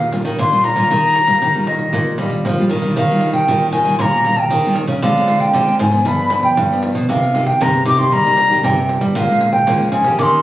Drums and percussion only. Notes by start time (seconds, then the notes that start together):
0.02 pandeiro
0.13 pandeiro
0.25 pandeiro
0.39 pandeiro
0.53 pandeiro
0.64 pandeiro
0.76 pandeiro
0.91 pandeiro
1.04 pandeiro
1.16 pandeiro
1.28 pandeiro
1.42 pandeiro
1.56 pandeiro
1.67 pandeiro
1.79 pandeiro
1.93 pandeiro
2.06 pandeiro
2.18 pandeiro
2.30 pandeiro
2.45 pandeiro
2.58 pandeiro
2.69 pandeiro
2.82 pandeiro
2.96 pandeiro
3.10 pandeiro
3.21 pandeiro
3.33 pandeiro
3.48 pandeiro
3.61 pandeiro
3.73 pandeiro
3.85 pandeiro
4.00 pandeiro
4.13 pandeiro
4.25 pandeiro
4.36 pandeiro
4.51 pandeiro
4.64 pandeiro
4.76 pandeiro
4.88 pandeiro
5.03 pandeiro
5.16 pandeiro
5.28 pandeiro
5.40 pandeiro
5.55 pandeiro
5.68 pandeiro
5.80 pandeiro
5.92 pandeiro
6.06 pandeiro
6.19 pandeiro
6.30 pandeiro
6.43 pandeiro
6.57 pandeiro
6.71 pandeiro
6.83 pandeiro
6.95 pandeiro
7.09 pandeiro
7.23 pandeiro
7.35 pandeiro
7.46 pandeiro
7.61 pandeiro
7.74 pandeiro
7.86 pandeiro
7.97 pandeiro
8.12 pandeiro
8.26 pandeiro
8.37 pandeiro
8.50 pandeiro
8.64 pandeiro
8.78 pandeiro
8.89 pandeiro
9.01 pandeiro
9.15 pandeiro
9.29 pandeiro
9.41 pandeiro
9.53 pandeiro
9.67 pandeiro
9.81 pandeiro
9.92 pandeiro
10.04 pandeiro
10.19 pandeiro
10.32 pandeiro